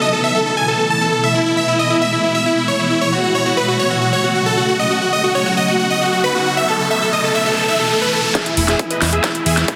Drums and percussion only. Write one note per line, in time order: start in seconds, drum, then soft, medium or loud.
8.35 kick loud
8.35 snare soft
8.35 closed hi-hat medium
8.46 closed hi-hat medium
8.57 open hi-hat loud
8.68 snare soft
8.68 closed hi-hat medium
8.79 kick loud
8.79 closed hi-hat medium
8.90 closed hi-hat medium
9.02 snare soft
9.02 open hi-hat loud
9.13 closed hi-hat soft
9.24 kick loud
9.24 snare soft
9.24 closed hi-hat medium
9.35 closed hi-hat medium
9.46 open hi-hat medium
9.57 snare soft
9.57 closed hi-hat medium
9.68 kick loud
9.68 closed hi-hat medium